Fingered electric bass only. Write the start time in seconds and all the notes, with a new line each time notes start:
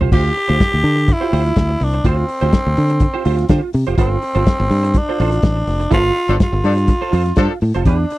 0.00 C2
0.12 D2
0.49 D2
0.74 D2
0.84 D3
1.33 D2
1.57 D2
1.81 C2
2.05 D2
2.42 D2
2.67 D2
2.78 D3
3.26 D2
3.50 D3
3.74 C3
3.88 F1
3.98 G1
4.35 G1
4.60 G1
4.71 G2
5.20 A1
5.44 A1
5.67 F1
5.92 G1
6.29 G1
6.53 G1
6.64 G2
7.13 F2
7.37 G2
7.62 A2
7.75 F1
7.86 E2